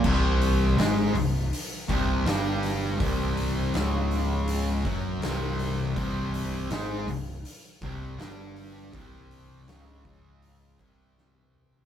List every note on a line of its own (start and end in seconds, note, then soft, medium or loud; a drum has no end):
0.04 0.74 C1 medium
0.04 0.77 C2 medium
0.04 0.77 C3 loud
0.04 kick loud
0.04 crash loud
0.42 open hi-hat medium
0.78 1.12 G#1 medium
0.78 1.14 G#2 medium
0.78 1.15 G#3 loud
0.78 snare loud
0.78 open hi-hat medium
1.14 1.49 C1 medium
1.14 1.44 C2 medium
1.14 open hi-hat medium
1.53 open hi-hat medium
1.88 2.24 C1 medium
1.88 2.25 C2 medium
1.88 2.25 C3 loud
1.88 kick medium
1.88 open hi-hat medium
2.26 2.96 G1 medium
2.26 2.99 G2 medium
2.26 2.99 G3 loud
2.26 snare loud
2.26 open hi-hat medium
2.63 snare soft
2.63 open hi-hat medium
3.00 3.70 C1 medium
3.00 3.73 C2 medium
3.00 3.74 C3 loud
3.00 kick loud
3.00 open hi-hat medium
3.37 open hi-hat medium
3.74 4.81 C#1 medium
3.74 4.85 C#2 medium
3.74 4.85 C#3 medium
3.74 snare loud
3.74 open hi-hat medium
4.11 open hi-hat medium
4.48 open hi-hat medium
4.85 5.20 F#1 medium
4.85 5.22 F#2 medium
4.85 5.22 F#3 medium
4.85 kick loud
4.85 open hi-hat soft
5.21 5.92 C1 medium
5.21 5.96 C2 medium
5.21 5.96 C3 loud
5.21 snare loud
5.21 open hi-hat medium
5.59 snare soft
5.59 open hi-hat medium
5.96 6.67 C1 medium
5.96 6.70 C2 loud
5.96 6.70 C3 loud
5.96 kick medium
5.96 open hi-hat medium
6.34 open hi-hat medium
6.70 7.06 G#1 medium
6.70 7.07 G#2 loud
6.70 7.08 G#3 loud
6.70 snare loud
6.70 open hi-hat medium
7.07 7.42 C1 medium
7.07 7.38 C2 medium
7.07 open hi-hat medium
7.45 open hi-hat medium
7.82 8.16 C1 medium
7.82 8.19 C2 medium
7.82 8.19 C3 medium
7.82 kick loud
7.82 open hi-hat medium
8.19 8.90 G1 medium
8.19 8.92 G2 medium
8.19 8.93 G3 loud
8.19 snare loud
8.19 open hi-hat medium
8.56 open hi-hat medium
8.93 9.64 C1 medium
8.93 9.67 C2 medium
8.93 9.67 C3 loud
8.93 kick loud
8.93 open hi-hat medium
9.31 open hi-hat medium
9.68 10.03 C#1 medium
9.68 10.04 C#2 medium
9.68 10.05 C#3 medium
9.68 snare loud
9.68 open hi-hat medium
10.05 10.76 C#1 medium
10.05 10.79 C#2 medium
10.05 10.79 C#3 medium
10.05 kick loud
10.05 open hi-hat medium
10.42 open hi-hat medium
10.79 11.85 C1 medium
10.79 11.85 C2 medium
10.79 11.85 C3 loud
10.79 kick medium
10.79 open hi-hat medium
11.18 snare medium
11.36 high tom medium
11.54 mid tom medium
11.73 floor tom medium